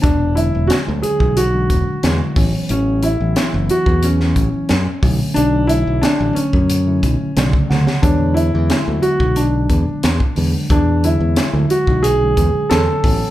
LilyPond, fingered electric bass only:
\new Staff \with { instrumentName = "Fingered electric bass" } { \clef bass \time 4/4 \key e \mixolydian \tempo 4 = 90 e,,8. e,,16 r16 d,16 r16 b,,8. e,,16 r16 e,16 r16 a,,16 r16 | a,,8. a,,16 r16 fis,,16 r16 e,8. a,,16 r16 fis,16 r16 b,,16 r16 | b,,8. b,,16 r16 a,,16 r16 fis,8. b,,16 r16 b,,16 r16 d,16 r16 | e,8. e,16 r16 d,16 r16 b,,8. e,16 r16 e,16 r16 e,16 r16 |
e,8. e,16 r16 d,16 r16 b,,8. e,16 r16 e,16 r16 a,,16 r16 | }